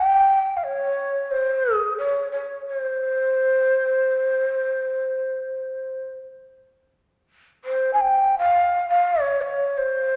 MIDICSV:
0, 0, Header, 1, 2, 480
1, 0, Start_track
1, 0, Tempo, 500000
1, 9756, End_track
2, 0, Start_track
2, 0, Title_t, "Shakuhachi"
2, 0, Program_c, 0, 77
2, 0, Note_on_c, 0, 79, 90
2, 545, Note_on_c, 0, 77, 54
2, 560, Note_off_c, 0, 79, 0
2, 614, Note_on_c, 0, 73, 84
2, 628, Note_off_c, 0, 77, 0
2, 1258, Note_on_c, 0, 72, 83
2, 1272, Note_off_c, 0, 73, 0
2, 1690, Note_off_c, 0, 72, 0
2, 1690, Note_on_c, 0, 68, 83
2, 1891, Note_off_c, 0, 68, 0
2, 1902, Note_on_c, 0, 73, 75
2, 2192, Note_off_c, 0, 73, 0
2, 2222, Note_on_c, 0, 73, 65
2, 2516, Note_off_c, 0, 73, 0
2, 2566, Note_on_c, 0, 72, 83
2, 5878, Note_off_c, 0, 72, 0
2, 7342, Note_on_c, 0, 72, 76
2, 7595, Note_off_c, 0, 72, 0
2, 7618, Note_on_c, 0, 80, 60
2, 7688, Note_on_c, 0, 79, 79
2, 7702, Note_off_c, 0, 80, 0
2, 8022, Note_off_c, 0, 79, 0
2, 8050, Note_on_c, 0, 77, 90
2, 8507, Note_off_c, 0, 77, 0
2, 8537, Note_on_c, 0, 77, 84
2, 8854, Note_off_c, 0, 77, 0
2, 8854, Note_on_c, 0, 73, 84
2, 9038, Note_off_c, 0, 73, 0
2, 9038, Note_on_c, 0, 73, 75
2, 9386, Note_on_c, 0, 72, 81
2, 9400, Note_off_c, 0, 73, 0
2, 9756, Note_off_c, 0, 72, 0
2, 9756, End_track
0, 0, End_of_file